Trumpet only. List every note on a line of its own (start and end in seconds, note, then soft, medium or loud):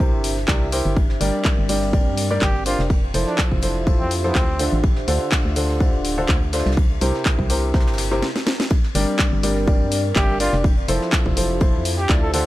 2.42 2.64 G4 medium
2.66 2.81 F4 medium
3.27 3.41 D4 medium
4.00 4.13 C4 medium
4.24 4.65 C4 medium
10.16 10.38 G4 medium
10.40 10.55 F4 medium
11.98 12.12 G4 loud
12.22 12.30 A4 medium
12.34 12.42 A4 medium